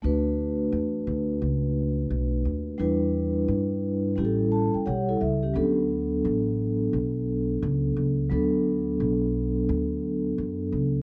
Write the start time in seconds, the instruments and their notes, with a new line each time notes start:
0.02 upright bass D2, vibraphone A3 D4 F#4 B4
0.72 upright bass E2
1.07 upright bass D2
1.42 upright bass C#2
2.10 upright bass B1
2.45 upright bass D#2
2.78 upright bass E2, vibraphone G3 D4 E4 B4
3.48 upright bass G2
4.16 upright bass A1, vibraphone G3 C#4 E4 G4
4.25 vibraphone A4
4.52 vibraphone A5
4.74 vibraphone G5, muted upright bass stroke
4.86 upright bass B1, vibraphone G4 C#5 F#5
5.09 vibraphone E4 A4
5.21 upright bass C#2, vibraphone E5
5.43 vibraphone C#4 G4
5.54 upright bass D2, vibraphone F#3 B3 D4 A4
6.25 upright bass A1
6.93 upright bass B1
7.63 upright bass C#2
7.96 upright bass C#2
8.30 upright bass D2, vibraphone F#3 B3 D4 A4
9.00 upright bass B1
9.69 upright bass D2
10.38 upright bass F#2
10.72 upright bass C#2